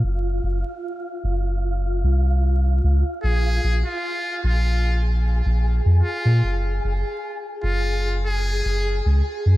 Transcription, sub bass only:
X:1
M:4/4
L:1/16
Q:"Swing 16ths" 1/4=75
K:Gblyd
V:1 name="Sub bass" clef=bass
G,,,2 G,,, z3 G,,,4 C,,4 D,, z | B,,,2 B,,, z3 B,,,4- B,,, B,,,2 F,, z B,, | G,,,2 G,,, z3 G,,,4- G,,, G,,,2 D,, z G,, |]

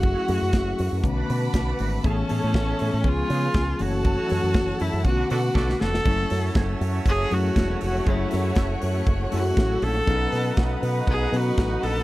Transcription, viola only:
X:1
M:4/4
L:1/8
Q:1/4=120
K:F#m
V:1 name="Viola"
F4- F z3 | C4 ^E3 F- | F3 E F F2 A- | A3 z G F2 F |
E2 z3 F2 A- | A3 z G F2 A |]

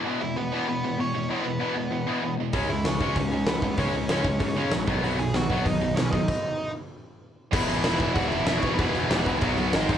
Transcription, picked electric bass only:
X:1
M:4/4
L:1/8
Q:1/4=192
K:E
V:1 name="Picked electric bass" clef=bass
z8 | z8 | C,, C,, C,, C,, C,,2 C,,2 | C,, C,, C,, C,, C, C, ^A,,, B,,, |
B,,, B,,, B,,, B,,, B,,,2 B,,,2 | z8 | E,,, A,,, E,,, E,,, C,, E,,, E,,, E,,, | E,,, E,,, E,,, C,, B,,, B,,, G,,, G,,, |]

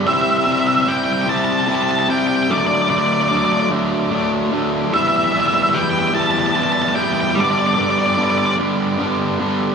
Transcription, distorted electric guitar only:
X:1
M:6/8
L:1/8
Q:3/8=49
K:Em
V:1 name="Distorted electric guitar" clef=bass
[C,G,CE] [C,G,CE] [C,G,CE] [C,G,CE] [C,G,CE] [C,G,CE] | [D,F,A,D] [D,F,A,D] [D,F,A,D] [D,F,A,D] [D,F,A,D] [D,F,A,D] | [E,G,B,E] [E,G,B,E] [E,G,B,E] [E,G,B,E] [E,G,B,E] [E,G,B,E] | [G,,D,G,B,D] [G,,D,G,B,D] [G,,D,G,B,D] [G,,D,G,B,D] [G,,D,G,B,D] [G,,D,G,B,D] |]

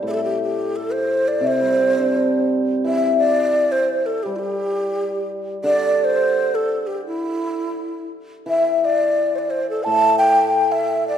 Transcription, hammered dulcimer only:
X:1
M:2/4
L:1/16
Q:1/4=86
K:none
V:1 name="Hammered dulcimer" clef=bass
[A,,G,CDG]8 | C, G, C D G4 | E,8 | G,8 |
D,8- | D,4 z4 | E,8 | A,,8 |]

